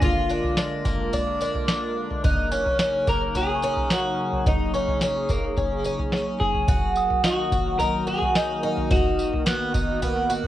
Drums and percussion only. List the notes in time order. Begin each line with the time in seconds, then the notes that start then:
0.02 kick, floor tom, tambourine
0.30 tambourine
0.44 floor tom
0.57 snare, tambourine
0.85 kick, floor tom, tambourine
1.13 floor tom, tambourine
1.41 tambourine
1.55 floor tom
1.68 snare, tambourine
2.10 floor tom
2.24 kick, floor tom, tambourine
2.52 tambourine
2.66 floor tom
2.79 snare, tambourine
3.07 kick, floor tom, tambourine
3.35 floor tom, tambourine
3.62 tambourine
3.77 floor tom
3.90 snare, tambourine
4.32 floor tom
4.46 kick, floor tom, tambourine
4.74 tambourine
4.88 floor tom
5.01 snare, tambourine
5.29 kick, floor tom, tambourine
5.57 kick, floor tom, tambourine
5.84 tambourine
5.99 floor tom
6.12 snare, tambourine
6.40 kick
6.54 floor tom
6.68 kick, floor tom, tambourine
6.96 tambourine
7.10 floor tom
7.24 snare, tambourine
7.52 kick, floor tom, tambourine
7.79 floor tom, tambourine
8.07 tambourine
8.21 floor tom
8.35 snare, tambourine
8.77 floor tom
8.91 kick, floor tom, tambourine
9.19 tambourine
9.33 floor tom
9.47 snare, tambourine
9.74 kick, floor tom, tambourine
10.02 floor tom, tambourine
10.30 tambourine
10.44 floor tom